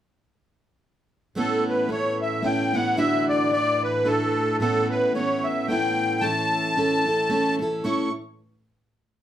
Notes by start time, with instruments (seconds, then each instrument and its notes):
1.35 steel-string acoustic guitar A2 A3 B3 C#4 E4, string section A2 E3, accordion A4
1.68 accordion B4
1.89 steel-string acoustic guitar A3 B3 C#4 E4, accordion C#5
2.21 accordion E5
2.43 steel-string acoustic guitar A3 B3 C#4 E4, accordion G5
2.73 steel-string acoustic guitar A3 B3 C#4 E4, accordion F#5
2.97 steel-string acoustic guitar D3 A3 D4 E4 F#4, accordion E5
3.28 accordion D5
3.51 steel-string acoustic guitar A3 D4 E4 F#4, accordion D5
3.83 accordion B4
4.05 steel-string acoustic guitar A3 D4 E4 F#4, accordion A4
4.60 steel-string acoustic guitar A2 A3 B3 C#4 E4, accordion A4
4.90 accordion B4
5.14 steel-string acoustic guitar A3 B3 C#4 E4, accordion C#5
5.44 accordion E5
5.68 steel-string acoustic guitar A3 B3 C#4 E4, accordion G5
6.21 steel-string acoustic guitar A2 E3 A3 C#4 E4 A4, accordion A5
6.76 steel-string acoustic guitar A3 C#4 E4 A4
7.05 steel-string acoustic guitar A3 C#4 E4 A4
7.30 steel-string acoustic guitar A3 C#4 E4 A4
7.59 steel-string acoustic guitar A3 C#4 E4 A4
7.84 steel-string acoustic guitar A2 A3 C#4 E4 A4, accordion C#6